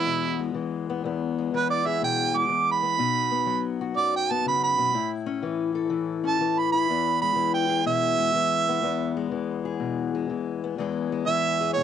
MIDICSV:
0, 0, Header, 1, 3, 480
1, 0, Start_track
1, 0, Key_signature, 4, "major"
1, 0, Tempo, 487409
1, 1015, Time_signature, 4, 2, 24, 8
1, 11654, End_track
2, 0, Start_track
2, 0, Title_t, "Harmonica"
2, 0, Program_c, 0, 22
2, 0, Note_on_c, 0, 64, 80
2, 504, Note_off_c, 0, 64, 0
2, 1538, Note_on_c, 0, 71, 76
2, 1669, Note_off_c, 0, 71, 0
2, 1675, Note_on_c, 0, 74, 84
2, 1834, Note_on_c, 0, 76, 77
2, 1849, Note_off_c, 0, 74, 0
2, 1981, Note_off_c, 0, 76, 0
2, 2009, Note_on_c, 0, 79, 71
2, 2340, Note_on_c, 0, 86, 76
2, 2354, Note_off_c, 0, 79, 0
2, 2629, Note_off_c, 0, 86, 0
2, 2674, Note_on_c, 0, 83, 90
2, 3578, Note_off_c, 0, 83, 0
2, 3911, Note_on_c, 0, 74, 84
2, 4059, Note_off_c, 0, 74, 0
2, 4097, Note_on_c, 0, 79, 71
2, 4253, Note_on_c, 0, 81, 71
2, 4268, Note_off_c, 0, 79, 0
2, 4391, Note_off_c, 0, 81, 0
2, 4411, Note_on_c, 0, 83, 72
2, 4549, Note_off_c, 0, 83, 0
2, 4564, Note_on_c, 0, 83, 85
2, 5016, Note_off_c, 0, 83, 0
2, 6172, Note_on_c, 0, 81, 81
2, 6485, Note_on_c, 0, 83, 79
2, 6500, Note_off_c, 0, 81, 0
2, 6614, Note_off_c, 0, 83, 0
2, 6620, Note_on_c, 0, 83, 84
2, 7084, Note_off_c, 0, 83, 0
2, 7106, Note_on_c, 0, 83, 83
2, 7412, Note_off_c, 0, 83, 0
2, 7425, Note_on_c, 0, 79, 74
2, 7731, Note_off_c, 0, 79, 0
2, 7748, Note_on_c, 0, 76, 106
2, 9142, Note_off_c, 0, 76, 0
2, 11092, Note_on_c, 0, 76, 93
2, 11548, Note_off_c, 0, 76, 0
2, 11554, Note_on_c, 0, 73, 85
2, 11654, Note_off_c, 0, 73, 0
2, 11654, End_track
3, 0, Start_track
3, 0, Title_t, "Steel-string acoustic guitar"
3, 0, Program_c, 1, 25
3, 0, Note_on_c, 1, 40, 64
3, 0, Note_on_c, 1, 52, 57
3, 0, Note_on_c, 1, 56, 58
3, 0, Note_on_c, 1, 59, 57
3, 0, Note_on_c, 1, 68, 61
3, 56, Note_on_c, 1, 47, 54
3, 376, Note_off_c, 1, 56, 0
3, 390, Note_on_c, 1, 56, 48
3, 526, Note_off_c, 1, 52, 0
3, 536, Note_off_c, 1, 47, 0
3, 538, Note_on_c, 1, 52, 53
3, 880, Note_off_c, 1, 59, 0
3, 884, Note_on_c, 1, 59, 60
3, 1011, Note_off_c, 1, 40, 0
3, 1024, Note_on_c, 1, 40, 69
3, 1035, Note_off_c, 1, 59, 0
3, 1039, Note_on_c, 1, 59, 60
3, 1344, Note_off_c, 1, 56, 0
3, 1365, Note_on_c, 1, 56, 54
3, 1417, Note_off_c, 1, 68, 0
3, 1497, Note_off_c, 1, 52, 0
3, 1515, Note_on_c, 1, 52, 67
3, 1834, Note_on_c, 1, 68, 60
3, 1984, Note_on_c, 1, 47, 48
3, 2292, Note_off_c, 1, 56, 0
3, 2304, Note_on_c, 1, 56, 51
3, 2441, Note_off_c, 1, 52, 0
3, 2453, Note_on_c, 1, 52, 58
3, 2461, Note_off_c, 1, 47, 0
3, 2770, Note_off_c, 1, 59, 0
3, 2782, Note_on_c, 1, 59, 51
3, 2926, Note_off_c, 1, 68, 0
3, 2935, Note_off_c, 1, 52, 0
3, 2939, Note_off_c, 1, 59, 0
3, 2940, Note_off_c, 1, 56, 0
3, 2941, Note_off_c, 1, 40, 0
3, 2944, Note_on_c, 1, 47, 66
3, 2945, Note_on_c, 1, 63, 54
3, 3262, Note_on_c, 1, 59, 55
3, 3409, Note_on_c, 1, 54, 60
3, 3751, Note_on_c, 1, 66, 57
3, 3897, Note_on_c, 1, 42, 52
3, 3901, Note_off_c, 1, 47, 0
3, 4220, Note_off_c, 1, 59, 0
3, 4239, Note_on_c, 1, 59, 49
3, 4383, Note_on_c, 1, 49, 59
3, 4702, Note_off_c, 1, 49, 0
3, 4708, Note_on_c, 1, 47, 59
3, 4834, Note_off_c, 1, 54, 0
3, 4838, Note_off_c, 1, 42, 0
3, 4842, Note_off_c, 1, 63, 0
3, 4844, Note_off_c, 1, 66, 0
3, 4848, Note_off_c, 1, 59, 0
3, 4862, Note_off_c, 1, 47, 0
3, 4868, Note_on_c, 1, 45, 67
3, 4872, Note_on_c, 1, 64, 58
3, 5183, Note_on_c, 1, 61, 61
3, 5343, Note_on_c, 1, 52, 68
3, 5661, Note_on_c, 1, 69, 58
3, 5808, Note_off_c, 1, 52, 0
3, 5808, Note_on_c, 1, 52, 58
3, 6129, Note_off_c, 1, 61, 0
3, 6141, Note_on_c, 1, 61, 48
3, 6312, Note_off_c, 1, 52, 0
3, 6312, Note_on_c, 1, 52, 60
3, 6628, Note_off_c, 1, 64, 0
3, 6632, Note_on_c, 1, 64, 59
3, 6759, Note_off_c, 1, 61, 0
3, 6759, Note_off_c, 1, 69, 0
3, 6763, Note_off_c, 1, 45, 0
3, 6791, Note_on_c, 1, 40, 71
3, 6798, Note_off_c, 1, 64, 0
3, 6802, Note_on_c, 1, 59, 58
3, 7115, Note_on_c, 1, 56, 55
3, 7240, Note_off_c, 1, 52, 0
3, 7244, Note_on_c, 1, 52, 65
3, 7578, Note_on_c, 1, 68, 58
3, 7735, Note_on_c, 1, 47, 58
3, 8050, Note_off_c, 1, 56, 0
3, 8054, Note_on_c, 1, 56, 56
3, 8212, Note_off_c, 1, 52, 0
3, 8216, Note_off_c, 1, 47, 0
3, 8216, Note_on_c, 1, 52, 56
3, 8552, Note_off_c, 1, 59, 0
3, 8556, Note_on_c, 1, 59, 62
3, 8688, Note_off_c, 1, 40, 0
3, 8692, Note_on_c, 1, 40, 69
3, 8693, Note_off_c, 1, 59, 0
3, 8696, Note_on_c, 1, 59, 54
3, 9015, Note_off_c, 1, 56, 0
3, 9029, Note_on_c, 1, 56, 57
3, 9162, Note_off_c, 1, 52, 0
3, 9173, Note_on_c, 1, 52, 60
3, 9501, Note_off_c, 1, 68, 0
3, 9505, Note_on_c, 1, 68, 62
3, 9649, Note_on_c, 1, 47, 57
3, 9979, Note_off_c, 1, 56, 0
3, 9991, Note_on_c, 1, 56, 48
3, 10125, Note_off_c, 1, 52, 0
3, 10132, Note_off_c, 1, 47, 0
3, 10137, Note_on_c, 1, 52, 57
3, 10455, Note_off_c, 1, 59, 0
3, 10475, Note_on_c, 1, 59, 57
3, 10599, Note_off_c, 1, 68, 0
3, 10603, Note_off_c, 1, 40, 0
3, 10607, Note_off_c, 1, 52, 0
3, 10615, Note_on_c, 1, 40, 68
3, 10619, Note_on_c, 1, 52, 55
3, 10622, Note_off_c, 1, 56, 0
3, 10627, Note_off_c, 1, 59, 0
3, 10634, Note_on_c, 1, 56, 58
3, 10639, Note_on_c, 1, 59, 57
3, 10650, Note_on_c, 1, 68, 63
3, 10947, Note_off_c, 1, 56, 0
3, 10951, Note_on_c, 1, 56, 59
3, 11096, Note_off_c, 1, 52, 0
3, 11099, Note_on_c, 1, 52, 60
3, 11428, Note_off_c, 1, 68, 0
3, 11432, Note_on_c, 1, 68, 58
3, 11578, Note_on_c, 1, 47, 59
3, 11654, Note_off_c, 1, 40, 0
3, 11654, Note_off_c, 1, 47, 0
3, 11654, Note_off_c, 1, 52, 0
3, 11654, Note_off_c, 1, 56, 0
3, 11654, Note_off_c, 1, 59, 0
3, 11654, Note_off_c, 1, 68, 0
3, 11654, End_track
0, 0, End_of_file